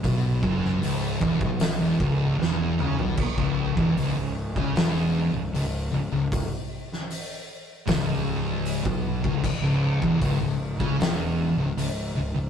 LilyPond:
<<
  \new Staff \with { instrumentName = "Distorted electric guitar" } { \clef bass \time 4/4 \key cis \minor \tempo 4 = 77 b,8 fis,8 cis,8 e,16 b,8 e,16 cis,8 e,8 cis16 b,16 | r16 cis,8 e,16 cis,16 cis,8 cis16 e,8. cis,16 cis,8 cis,16 cis,16~ | cis,16 r4. r16 cis,4~ cis,16 b,8 cis,16 | r16 cis,8 e,16 cis,16 cis,8 cis16 e,8. cis,16 cis,8 cis,16 cis,16 | }
  \new Staff \with { instrumentName = "Distorted electric guitar" } { \clef bass \time 4/4 \key cis \minor b,8 fis,8 cis,8 e,16 b,8 e,16 cis,8 e,8 cis16 b,16 | r16 cis,8 e,16 cis,16 cis,8 cis16 e,8. cis,16 cis,8 cis,16 cis,16~ | cis,16 r4. r16 cis,4~ cis,16 b,8 cis,16 | r16 cis,8 e,16 cis,16 cis,8 cis16 e,8. cis,16 cis,8 cis,16 cis,16 | }
  \new Staff \with { instrumentName = "Fingered electric bass" } { \clef bass \time 4/4 \key cis \minor b,,8 fis,,8 cis,,8 e,,16 b,,8 e,,16 cis,,8 e,,8 cis,16 b,,16 | r16 cis,,8 e,,16 cis,,16 cis,,8 cis,16 e,,8. cis,,16 cis,,8 cis,,16 cis,,16~ | cis,,16 r4. r16 cis,,4~ cis,,16 b,,8 cis,,16 | r16 cis,,8 e,,16 cis,,16 cis,,8 cis,16 e,,8. cis,,16 cis,,8 cis,,16 cis,,16 | }
  \new DrumStaff \with { instrumentName = "Drums" } \drummode { \time 4/4 <hho bd>8 bd16 sn16 hho8 bd16 bd16 <hho sn>8 bd8 sn8 toml16 tomfh16 | <cymc bd>16 bd8 bd16 hho8. bd16 <hho sn>4 hho4 | <hho bd>8. sn16 hho4 <hho bd sn>4 hho16 bd8 bd16 | <cymc bd>8. bd16 <hho bd>8. bd16 <hho sn>4 hho4 | }
>>